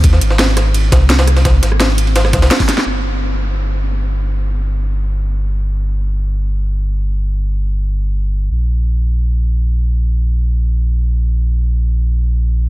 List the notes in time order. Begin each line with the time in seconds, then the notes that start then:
Already playing: D#2
0.04 kick, closed hi-hat, ride
0.13 snare
0.21 G#1, closed hi-hat, ride
0.31 snare
0.39 snare, closed hi-hat, ride
0.57 cross-stick, snare, closed hi-hat, ride
0.74 closed hi-hat, ride
0.92 C2, kick, snare, closed hi-hat, ride
1.10 snare, closed hi-hat, ride
1.19 snare, ride
1.27 cross-stick, closed hi-hat
1.37 snare, ride
1.45 kick, snare, closed hi-hat, ride
1.63 G#1, snare, closed hi-hat, ride
1.72 cross-stick
1.80 snare, closed hi-hat, ride
1.98 closed hi-hat, ride
2.07 ride
2.16 snare, closed hi-hat, ride
2.25 cross-stick, snare
2.33 D#2, kick, snare, closed hi-hat, ride
2.42 C2, snare, ride
2.51 snare, closed hi-hat, ride
2.60 kick, snare, open hi-hat
2.69 snare, closed hi-hat, ride
2.78 snare
2.86 G1
8.51 A#1